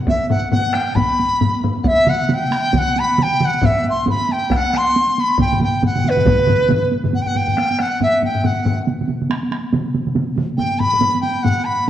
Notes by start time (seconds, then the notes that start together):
0.07 E5, taiko, taiko high
0.29 F#5, taiko low-mid, taiko high
0.44 taiko high
0.50 F#5, taiko low-mid, taiko high
0.66 taiko high
0.73 G5, taiko rim, taiko high
0.88 taiko high
0.95 B5, taiko, taiko low-mid, taiko high
1.11 taiko high
1.20 taiko high
1.33 taiko high
1.41 taiko low-mid, taiko high
1.55 taiko high
1.64 taiko low-mid, taiko high
1.77 taiko high
1.83 E5 F#5, taiko, taiko high
2.07 F#5, taiko mid, taiko high
2.21 taiko high
2.29 taiko mid, taiko high
2.33 G5
2.42 taiko high
2.51 taiko rim, taiko high
2.64 taiko high
2.73 taiko, taiko mid, taiko high
2.77 F#5
2.86 taiko high
2.96 B5, taiko high
3.09 taiko high
3.18 G5, taiko mid, taiko high
3.32 taiko high
3.40 F#5, taiko mid
3.54 taiko high
3.61 E5, taiko, taiko low-mid, taiko high
3.84 taiko high
3.89 C6
3.97 taiko high
4.06 B5, taiko low-mid, taiko high
4.20 taiko high
4.29 G5, taiko high
4.43 taiko high
4.50 taiko rim, taiko, taiko high
4.56 F#5
4.65 taiko high
4.73 C6, taiko rim, taiko high
4.87 taiko high
4.96 taiko high
5.09 taiko high
5.18 B5, taiko high
5.30 taiko high
5.38 G5, taiko, taiko low-mid, taiko mid, taiko high
5.53 taiko low-mid, taiko mid, taiko high
5.60 G5, taiko low-mid, taiko mid, taiko high
5.74 taiko high
5.82 F#5, taiko low-mid, taiko mid, taiko high
5.96 taiko low-mid, taiko mid, taiko high
6.04 taiko low-mid, taiko mid, taiko high
6.08 B4
6.17 taiko low-mid, taiko mid, taiko high
6.25 taiko, taiko low-mid, taiko mid, taiko high
6.41 taiko high
6.47 taiko low-mid, taiko mid, taiko high
6.62 taiko high
6.69 taiko low-mid, taiko mid, taiko high
6.84 taiko high
6.92 taiko high
7.04 taiko low-mid, taiko mid, taiko high
7.13 F#5, taiko low-mid, taiko high
7.21 G5
7.27 F#5, taiko low-mid, taiko high
7.35 G5, taiko low-mid, taiko high
7.48 taiko low-mid, taiko high
7.57 taiko rim, taiko high
7.71 taiko high
7.78 F#5, taiko rim, taiko high
7.93 taiko high
8.00 E5, taiko low-mid, taiko high
8.15 taiko high
8.22 G5, taiko low-mid, taiko high
8.35 taiko low-mid, taiko high
8.44 F#5, taiko low-mid, taiko high
8.57 taiko high
8.66 taiko low-mid, taiko high
8.79 taiko high
8.87 taiko mid, taiko high
9.00 taiko mid, taiko high
9.08 taiko mid, taiko high
9.21 taiko mid, taiko high
9.30 taiko rim, taiko high
9.43 taiko high
9.51 taiko rim, taiko high
9.64 taiko high
9.73 taiko mid, taiko high
9.87 taiko high
9.94 taiko mid, taiko high
10.07 taiko mid, taiko high
10.15 taiko mid, taiko high
10.28 taiko high
10.37 taiko mid, taiko high
10.50 taiko high
10.57 G5, taiko low-mid, taiko high
10.71 taiko high
10.79 B5, taiko low-mid, taiko high
10.93 taiko low-mid, taiko high
11.01 taiko low-mid, taiko high
11.15 taiko high
11.21 G5, taiko high
11.36 taiko high
11.43 F#5, taiko low-mid, taiko high
11.58 taiko high
11.64 B5
11.80 taiko high